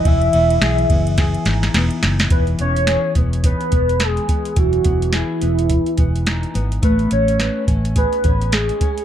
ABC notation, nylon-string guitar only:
X:1
M:4/4
L:1/8
Q:"Swing 16ths" 1/4=106
K:E
V:1 name="Nylon-string guitar"
E, B, G B, G D B, D | E, B, G B, D B,2 B, | E, B, G B,2 B, D B, | A, C B C G C G C |]